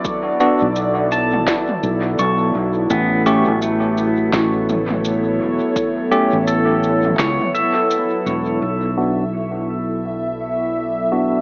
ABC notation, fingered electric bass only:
X:1
M:4/4
L:1/16
Q:"Swing 16ths" 1/4=84
K:Bm
V:1 name="Fingered electric bass" clef=bass
z3 B,,,4- B,,, z2 B,,,2 B,,,2 B,,,2 | A,,,3 A,,,4- A,,, A,,,6 E,,, z | z3 A,,,4- A,,, C,, z4 z E,,,2 | B,,,16 |]